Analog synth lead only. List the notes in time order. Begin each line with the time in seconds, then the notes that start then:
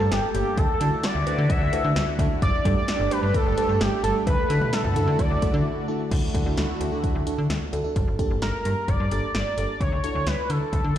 Already playing: A4
0.11 G4
0.35 G4
0.58 A4
1.04 D5
1.50 E5
2.42 D5
2.77 D5
3.12 B4
3.35 A4
3.81 G4
4.04 A4
4.27 B4
4.73 A4
5.19 D5
8.42 A#4
8.88 D5
9.35 D5
9.81 C#5
10.04 C#5
10.27 B4
10.50 A4